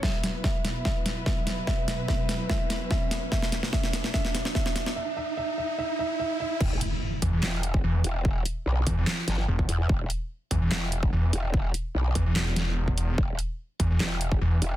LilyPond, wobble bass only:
\new Staff \with { instrumentName = "Wobble bass" } { \clef bass \time 4/4 \key b \minor \tempo 4 = 146 r1 | r1 | r1 | r1 |
\key e \minor e,,8 r4. e,,4 r8 e,,8~ | e,,8 r8 b,,8 r4 g,,8 r8 e,8 | e,,8 r4. e,,4 r8 e,,8~ | e,,8 r8 b,,8 r2 r8 |
e,,8 r4. e,,4 r8 e,,8 | }